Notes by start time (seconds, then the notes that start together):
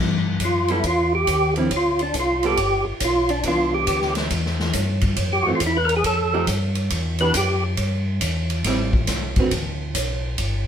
Already playing: G2
0.40 F#2, kick, hi-hat pedal, ride
0.45 F4
0.68 G3 B3 E4 A4, ride
0.84 E2 F4, kick, ride
1.15 G4
1.27 D#2, kick, hi-hat pedal, ride
1.56 D3 F3 C4 E4, ride
1.71 D2, kick, ride
1.76 F4
1.99 D4, ride
2.14 C2, kick, hi-hat pedal, ride
2.20 F4
2.43 G3 B3 F4 G4 A4, ride
2.57 G1, kick, ride
2.86 G1
3.00 B1, kick, hi-hat pedal, ride
3.05 F4
3.29 D4, ride
3.43 C2 E3 B3 D4, kick, ride
3.48 F4
3.75 G4
3.87 D2, kick, hi-hat pedal, ride
4.01 snare
4.15 snare, ride
4.30 E2, kick, ride
4.46 snare
4.60 snare
4.73 G2, kick, hi-hat pedal, ride
5.01 kick, ride
5.16 F#2, kick, ride
5.33 G4
5.43 F#2 F#4
5.47 E3 A3 C4
5.55 F4
5.60 E2, kick, hi-hat pedal, ride
5.67 E4
5.77 B4
5.85 A#4, ride
5.96 G#4
6.04 F2 A4, kick, ride
6.33 F3 A3 D#4 G4
6.47 G2, kick, hi-hat pedal, ride
6.75 ride
6.90 E2, kick, ride
7.18 E3 B3 D4 G4 B4, ride
7.34 F#2 G4, kick, hi-hat pedal, ride
7.77 G2, kick, ride
8.21 E2, kick, hi-hat pedal, ride
8.50 ride
8.64 A1 G3 C4 E4, kick, snare, ride
8.93 kick
9.07 C2, kick, snare, hi-hat pedal, ride
9.36 D3 C4 F#4, kick, ride
9.40 B4
9.51 D2, kick, ride
9.94 B1, kick, hi-hat pedal, ride
10.38 G1, kick, ride